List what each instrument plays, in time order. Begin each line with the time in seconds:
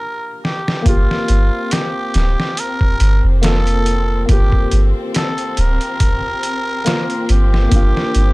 Already playing: muted trumpet A#4
0.45 muted trumpet G4, snare
0.68 snare
0.82 808-style bass G1, felt piano A#3 F4, string section C4, kick, closed hi-hat
0.88 muted trumpet F4, felt piano G4
1.11 snare
1.28 808-style bass G1, closed hi-hat
1.71 muted trumpet G4, snare, closed hi-hat
2.14 808-style bass D1, snare, closed hi-hat
2.40 snare
2.57 muted trumpet A#4, closed hi-hat
2.81 kick
3.00 808-style bass G1, closed hi-hat
3.24 808-style bass F1
3.42 felt piano A#3 F4 A4, muted trumpet A4, snare, closed hi-hat
3.67 closed hi-hat
3.86 closed hi-hat
4.26 808-style bass G1, felt piano A#3 F4, kick, closed hi-hat
4.31 muted trumpet G4, felt piano G4
4.52 kick
4.71 808-style bass G1, closed hi-hat
5.14 muted trumpet A4, snare, closed hi-hat
5.38 closed hi-hat
5.57 808-style bass D1, muted trumpet A#4, closed hi-hat
5.81 closed hi-hat
6.00 kick, closed hi-hat
6.43 closed hi-hat
6.85 felt piano A#3 F4 A#4, snare, closed hi-hat
7.10 closed hi-hat
7.29 808-style bass G1, muted trumpet G4, closed hi-hat
7.54 snare
7.68 808-style bass G1, felt piano A#3 D4, kick, closed hi-hat
7.76 felt piano F4
7.97 snare
8.15 808-style bass G1, closed hi-hat